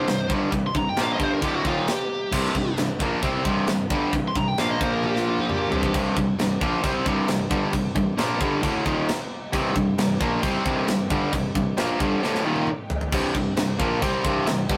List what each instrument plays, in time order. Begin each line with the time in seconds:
Already playing: string section C3 G3 D#4 G4, lead electric guitar C5
0.07 distorted electric guitar C2 G2, tuba C2, snare, china
0.28 tuba G1, distorted electric guitar G2 D3 G3, kick
0.51 distorted electric guitar C2 G2, tuba C2, kick, china
0.67 lead electric guitar C6
0.75 distorted electric guitar C2 G2, tuba C2, lead electric guitar A#5, kick
0.89 lead electric guitar G5
0.96 tuba A#1, distorted electric guitar A#2 F3 A#3, snare, china
1.02 lead electric guitar F5
1.13 lead electric guitar D#5
1.19 tuba G1, distorted electric guitar G2 D3 G3, kick
1.23 lead electric guitar C5
1.33 lead electric guitar A#4
1.41 tuba D1, distorted electric guitar D2 A2 D3, lead electric guitar G4, kick, china
1.56 lead electric guitar F#4
1.63 tuba D#1, distorted electric guitar D#2 A#2 D#3, lead electric guitar F4, kick
1.80 lead electric guitar D#4
1.88 lead electric guitar G4, snare, china
2.32 distorted electric guitar C2 G2 C3, tuba C2, kick, crash, china
2.55 tuba C2, distorted electric guitar C2 G2, kick
2.77 distorted electric guitar C2 G2, tuba C2, snare, china
2.99 tuba A#1, distorted electric guitar A#2 F3 A#3, kick
3.22 tuba C2, distorted electric guitar C3 G3 C4, kick, china
3.45 tuba C2, distorted electric guitar C2 G2 C3, kick
3.67 tuba C2, distorted electric guitar C2 G2, snare, china
3.90 tuba G1, distorted electric guitar G2 D3 G3, kick
4.13 tuba C2, distorted electric guitar C2 G2, kick, china
4.28 lead electric guitar C6
4.35 tuba C2, distorted electric guitar C2 G2, lead electric guitar A#5, kick
4.48 lead electric guitar G5
4.58 tuba A#1, distorted electric guitar A#2 F3 A#3, lead electric guitar F5, snare, china
4.70 lead electric guitar D#5
4.80 tuba A#1, string section A#2 F3 F4 A#4, distorted electric guitar A#2 F3 A#3, lead electric guitar C5, kick
4.93 lead electric guitar A#4
5.03 lead electric guitar G4, high tom
5.16 lead electric guitar F4, snare
5.29 lead electric guitar F4
5.38 lead electric guitar D#4, mid tom
5.49 lead electric guitar G4, mid tom
5.71 tuba C2, distorted electric guitar C2 G2 C3, string section C3 G3 D#4 G4, floor tom
5.83 kick
5.94 distorted electric guitar C2 G2 C3, tuba C2, string section C3 G3 D#4 G4, kick, crash
6.16 distorted electric guitar C2 G2, tuba C2, kick
6.38 tuba C2, distorted electric guitar C2 G2, snare, crash
6.61 tuba A#1, distorted electric guitar A#2 F3 A#3, kick
6.83 tuba C2, distorted electric guitar C3 G3 C4, kick, crash
7.05 distorted electric guitar C2 G2 C3, tuba C2, kick
7.28 distorted electric guitar C2 G2, tuba C2, snare, crash
7.50 tuba G1, distorted electric guitar G2 D3 G3, kick
7.72 distorted electric guitar C2 G2, tuba C2, kick, crash
7.95 distorted electric guitar C2 G2, tuba C2, kick
8.17 tuba A#1, distorted electric guitar A#2 F3 A#3, snare, crash
8.40 tuba G1, distorted electric guitar G2 D3 G3, kick
8.62 tuba D1, distorted electric guitar D2 A2 D3, kick, crash
8.85 tuba D#1, distorted electric guitar D#2 A#2 D#3, kick
9.09 snare, crash
9.53 tuba C2, distorted electric guitar C2 G2 C3, kick, crash
9.75 tuba C2, distorted electric guitar C2 G2, kick
9.98 tuba C2, distorted electric guitar C2 G2, snare, crash
10.20 tuba A#1, distorted electric guitar A#2 F3 A#3, kick
10.42 tuba C2, distorted electric guitar C3 G3 C4, kick, crash
10.65 distorted electric guitar C2 G2 C3, tuba C2, kick
10.88 distorted electric guitar C2 G2, tuba C2, snare, crash
11.10 tuba G1, distorted electric guitar G2 D3 G3, kick
11.33 tuba C2, distorted electric guitar C2 G2, kick, crash
11.55 distorted electric guitar C2 G2, tuba C2, kick
11.77 tuba A#1, distorted electric guitar A#2 F3 A#3, snare, crash
12.00 tuba G1, distorted electric guitar G2 D3 G3, kick
12.22 tuba D1, distorted electric guitar D2 A2 D3, snare
12.35 snare
12.44 tuba D#1, distorted electric guitar D#2 A#2 D#3
12.56 high tom
12.67 mid tom
12.90 floor tom
13.01 floor tom
13.12 distorted electric guitar C2 G2 C3, tuba C2, kick, crash
13.35 distorted electric guitar C2 G2, tuba C2, kick
13.57 distorted electric guitar C2 G2, tuba C2, snare, crash
13.80 tuba A#1, distorted electric guitar A#2 F3 A#3, kick
14.01 tuba C2, distorted electric guitar C3 G3 C4, kick, crash
14.24 distorted electric guitar C2 G2 C3, tuba C2, kick
14.47 distorted electric guitar C2 G2, tuba C2, snare, crash
14.69 tuba G1, distorted electric guitar G2 D3 G3, kick